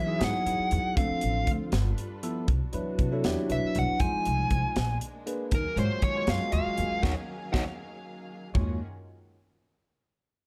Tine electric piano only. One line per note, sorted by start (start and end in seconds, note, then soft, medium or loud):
0.07 0.18 F#3 medium
0.07 0.18 D#4 medium
0.07 0.18 E4 medium
0.07 0.18 G#4 medium
0.19 0.43 F#3 medium
0.19 0.43 D#4 medium
0.19 0.44 E4 medium
0.19 0.44 G#4 medium
0.46 0.93 F#3 medium
0.46 0.93 D#4 medium
0.46 0.93 E4 medium
0.46 0.94 G#4 medium
0.96 1.72 F3 medium
0.96 1.73 C4 medium
0.96 1.72 D4 medium
0.96 1.73 A4 medium
2.23 2.48 F3 medium
2.23 2.48 B3 medium
2.23 2.48 E4 medium
2.23 2.49 A4 medium
2.73 3.09 F#3 medium
2.73 3.09 D4 medium
2.73 3.09 E4 medium
2.73 3.09 B4 medium
3.12 3.23 F#3 medium
3.12 3.24 D4 medium
3.12 3.24 E4 medium
3.12 3.24 A4 medium
3.25 3.48 F#3 medium
3.25 3.48 D4 medium
3.25 3.48 E4 medium
3.25 3.49 G4 loud
3.49 3.97 F#3 medium
3.49 3.97 D4 medium
3.49 3.97 E4 medium
3.49 3.97 B4 medium
3.99 4.76 G#3 medium
3.99 4.76 D#4 medium
3.99 4.76 F4 medium
3.99 4.76 C5 loud
5.26 5.52 A#3 medium
5.26 5.52 D4 medium
5.26 5.52 G#4 medium
5.26 5.52 B4 medium
5.77 6.13 G#3 medium
5.77 6.13 F4 medium
5.77 6.13 F#4 medium
5.77 6.13 C#5 medium
6.15 6.26 G#3 medium
6.15 6.26 F4 medium
6.15 6.27 F#4 medium
6.15 6.28 C5 medium
6.28 6.52 G#3 medium
6.28 6.51 F4 medium
6.28 6.52 F#4 medium
6.28 6.52 C#5 medium
6.53 7.00 G#3 medium
6.53 7.01 F4 medium
6.53 7.01 F#4 medium
6.53 7.01 D#5 medium
7.03 7.11 D#4 medium
7.03 7.12 F#4 medium
7.03 7.11 A#4 medium
7.52 7.61 D#4 loud
7.52 7.62 F#4 loud
7.52 7.61 A#4 medium
8.54 8.78 G#3 medium
8.54 8.78 F4 medium
8.54 8.78 F#4 medium
8.54 8.78 C#5 medium